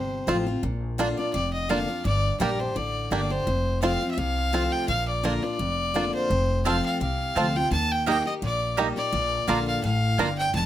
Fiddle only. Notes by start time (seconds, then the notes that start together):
Already playing: C5
1.18 D5
1.33 D5
1.53 D#5
1.69 F5
2.05 D5
2.40 A#4
2.59 C5
2.76 D5
3.12 D5
3.31 C5
3.82 F5
4.11 E5
4.17 F5
4.72 G5
4.88 F5
5.08 D5
5.24 A#4
5.44 D5
6.14 C5
6.66 F5
6.85 F5
7.01 F5
7.56 G5
7.72 A5
7.91 G5
8.08 G5
8.27 D#5
8.43 D5
8.97 D5
9.48 F5
9.68 F5
9.83 F5
10.38 G5
10.55 A5